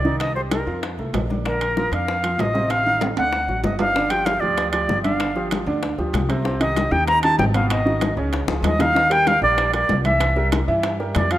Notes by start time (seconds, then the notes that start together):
Already playing: C2 D5
0.05 D#3 D#4, high bongo
0.20 D#5, high bongo, high conga, high timbale
0.35 G3 G4 C5, high bongo, high conga
0.51 A#4, high bongo, high conga, high timbale, low timbale
0.67 F2 F4 F5
0.83 high bongo, high conga, high timbale
0.98 C2 A3 A4, high bongo, high conga
1.13 A#1, high bongo, low bongo, high conga, high timbale, low timbale
1.30 D4 D5, high bongo, high conga
1.45 D3 D4 A#4, high bongo, high conga, high timbale
1.61 high bongo, high conga, high timbale
1.77 F3 F4, high bongo, high conga, low timbale
1.92 F2 D4 D5 F5, high conga, high timbale
2.08 high bongo, high conga
2.23 F3 F4, high bongo, high conga, high timbale
2.38 A1 D#5, high bongo, low bongo, high conga, high timbale, low timbale
2.54 C3 C4, high bongo, high conga
2.70 F5, high bongo, high conga, high timbale
2.86 D#3 D#4, high bongo, high conga
3.01 high bongo, high conga, high timbale
3.17 D2 D4 D5 F#5, high timbale
3.33 high bongo, high conga
3.48 A1 F#3 F#4, high bongo, high conga
3.63 G1 D#5, high bongo, low bongo, high conga, low timbale
3.79 D4 D5 F5, high bongo, high conga, low timbale
3.95 D3 D4 D5, high bongo, high conga
4.10 F3 F4 G4 G5, high bongo, high conga, high timbale
4.25 F5, high bongo, high conga, high timbale
4.40 D2 F3 F4 G4 D5, high conga
4.58 high bongo, high conga, high timbale
4.71 F3 F4 G4 D5, high bongo, high conga, high timbale
4.89 G1, high bongo, low bongo, high conga
5.03 D3 D4 D5 F5, high bongo, high conga, high timbale
5.20 high bongo, high conga, high timbale
5.36 F3 F4 G4, high bongo, high conga
5.51 high bongo, high conga, high timbale
5.66 D2 D3 D4 D5, high conga
5.83 high bongo, high conga, high timbale
5.98 D2 F3 F4 G4, high bongo, high conga
6.13 C2, high bongo, low bongo, high conga, high timbale
6.29 C3 C4 C5, high bongo, high conga, high timbale
6.45 C3 C4 C5, high bongo, high conga
6.60 D#3 D#4 G4 D#5, high bongo, high conga, high timbale
6.76 high bongo, high conga, high timbale
6.91 D#2 D#3 D#4 G4 G5, high conga
7.07 A#5, high bongo, high conga, high timbale
7.23 D#3 D#4 G4 A5, high bongo, high conga, high timbale
7.39 G#1 G5, high bongo, low bongo, high conga, low timbale
7.54 B2 B3 B4 F5, high bongo, high conga, high timbale
7.70 D#5, high bongo, high conga, high timbale
7.85 D#3 D#4 F#4, high bongo, high conga
8.01 high bongo, high conga, high timbale
8.17 C#2 C#3 C#4 C#5, high conga
8.33 high bongo, high conga, high timbale
8.48 C#2 F3 F4 G#4, high bongo, high conga
8.62 D#2 D#5, high bongo, high conga, high timbale, low timbale
8.79 D#3 D#4 D#5 F5, low bongo, high conga, high timbale
8.95 D#3 D#4 D#5, high bongo, high conga
9.10 G3 G4 A#4 G5, high bongo, high conga, high timbale
9.27 F5, high bongo, high conga, high timbale
9.42 A#1 G3 G4 A#4 D5, high conga
9.58 high bongo, high conga, high timbale
9.73 G3 G4 A#4 D5, high bongo, high conga, high timbale
9.89 C2, high bongo, low bongo, high conga, low timbale
10.04 E3 E4 E5, high bongo, high conga, high timbale
10.20 high bongo, high conga, high timbale
10.36 G3 G4 A#4, high bongo, high conga
10.52 high bongo, high conga, high timbale
10.68 G2 E3 E4 E5, high conga
10.83 high bongo, high conga, high timbale
11.00 G3 G4 A#4, high bongo, high conga
11.15 F2 D5, high bongo, low bongo, high conga, high timbale
11.31 F3 F4 F5, high bongo, high timbale